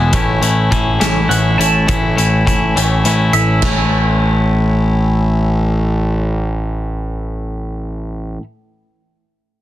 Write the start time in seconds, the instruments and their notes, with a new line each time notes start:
Already playing: picked electric bass E1, clean electric guitar E2 B2 E3 G#3 B3 E4 B5
0.13 picked electric bass A1, clean electric guitar A2 E3 A3 C#4 E4, kick, closed hi-hat
0.40 picked electric bass A1, clean electric guitar A2 E3 A3 C#4 E4, closed hi-hat
0.71 picked electric bass A1, clean electric guitar A2 E3 A3 C#4 E4, kick, closed hi-hat
0.99 picked electric bass A1, clean electric guitar A2 E3 A3 C#4 E4, snare, closed hi-hat
1.28 picked electric bass A1, clean electric guitar A2 E3 A3 C#4 E4 F#5, closed hi-hat
1.58 picked electric bass A1, clean electric guitar A2 E3 A3 C#4 E4 A5, closed hi-hat
1.87 picked electric bass A1, clean electric guitar A2 E3 A3 C#4 E4, kick, closed hi-hat
2.16 picked electric bass A1, clean electric guitar A2 E3 A3 C#4 E4, closed hi-hat
2.45 picked electric bass A1, clean electric guitar A2 E3 A3 C#4 E4, kick, closed hi-hat
2.75 picked electric bass A1, clean electric guitar A2 E3 A3 C#4 E4, closed hi-hat
3.04 picked electric bass A1, clean electric guitar A2 E3 A3 C#4 E4, closed hi-hat
3.33 picked electric bass A1, clean electric guitar A2 E3 A3 C#4 E4 E5, closed hi-hat
3.62 picked electric bass A1, clean electric guitar A2 E3 A3 C#4 E4, kick, snare, china